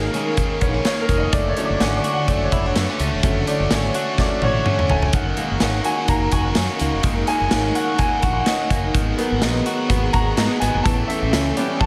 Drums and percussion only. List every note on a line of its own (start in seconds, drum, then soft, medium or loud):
0.14 closed hi-hat medium
0.37 kick medium
0.37 closed hi-hat medium
0.61 kick medium
0.61 closed hi-hat medium
0.85 snare loud
0.85 closed hi-hat medium
1.09 kick medium
1.09 closed hi-hat medium
1.33 kick loud
1.33 closed hi-hat medium
1.57 closed hi-hat medium
1.80 snare loud
1.80 closed hi-hat medium
2.04 closed hi-hat medium
2.28 kick medium
2.28 closed hi-hat medium
2.52 kick medium
2.52 closed hi-hat medium
2.76 snare loud
2.76 closed hi-hat medium
3.00 closed hi-hat medium
3.23 kick loud
3.23 closed hi-hat medium
3.47 closed hi-hat medium
3.71 snare loud
3.71 closed hi-hat medium
3.94 closed hi-hat medium
4.18 kick medium
4.18 snare medium
4.42 high tom medium
4.66 mid tom medium
4.79 mid tom medium
4.90 floor tom medium
5.02 floor tom medium
5.13 kick loud
5.13 closed hi-hat medium
5.37 closed hi-hat medium
5.60 snare loud
5.60 closed hi-hat medium
5.84 closed hi-hat medium
6.08 kick loud
6.08 closed hi-hat medium
6.32 kick medium
6.32 closed hi-hat medium
6.55 snare loud
6.55 closed hi-hat medium
6.79 closed hi-hat medium
7.03 kick loud
7.03 closed hi-hat loud
7.27 closed hi-hat medium
7.51 snare loud
7.51 closed hi-hat medium
7.75 closed hi-hat medium
7.99 kick medium
7.99 closed hi-hat medium
8.22 kick medium
8.22 closed hi-hat medium
8.46 snare loud
8.46 closed hi-hat medium
8.70 kick medium
8.70 closed hi-hat medium
8.95 kick loud
8.95 closed hi-hat medium
9.19 closed hi-hat medium
9.42 snare loud
9.42 closed hi-hat medium
9.66 closed hi-hat medium
9.90 kick loud
9.90 closed hi-hat medium
10.14 kick medium
10.14 closed hi-hat medium
10.37 snare loud
10.37 closed hi-hat medium
10.62 closed hi-hat medium
10.86 kick loud
10.86 closed hi-hat loud
11.10 closed hi-hat medium
11.33 snare loud
11.33 closed hi-hat medium
11.33 tambourine medium
11.57 closed hi-hat medium
11.81 kick loud
11.81 high tom medium